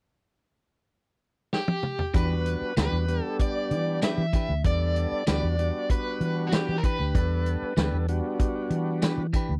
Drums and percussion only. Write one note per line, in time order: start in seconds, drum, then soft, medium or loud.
1.53 snare medium
1.68 high tom medium
1.83 mid tom medium
1.99 floor tom medium
2.14 kick loud
2.14 closed hi-hat medium
2.46 closed hi-hat medium
2.77 snare loud
2.77 closed hi-hat medium
2.77 tambourine loud
3.08 closed hi-hat medium
3.39 kick medium
3.39 closed hi-hat medium
3.71 closed hi-hat medium
4.02 snare loud
4.02 closed hi-hat medium
4.02 tambourine loud
4.33 kick medium
4.33 closed hi-hat medium
4.64 kick loud
4.64 closed hi-hat medium
4.96 closed hi-hat medium
5.27 snare loud
5.27 closed hi-hat medium
5.27 tambourine loud
5.59 closed hi-hat medium
5.90 kick medium
5.90 closed hi-hat medium
6.21 closed hi-hat medium
6.52 snare loud
6.52 closed hi-hat medium
6.52 tambourine loud
6.84 kick medium
6.84 closed hi-hat medium
7.15 kick loud
7.15 closed hi-hat medium
7.46 closed hi-hat medium
7.77 snare loud
7.77 closed hi-hat medium
7.77 tambourine loud
8.08 closed hi-hat medium
8.40 kick medium
8.40 closed hi-hat medium
8.70 closed hi-hat medium
9.02 snare loud
9.02 closed hi-hat medium
9.02 tambourine loud
9.33 kick medium
9.33 closed hi-hat medium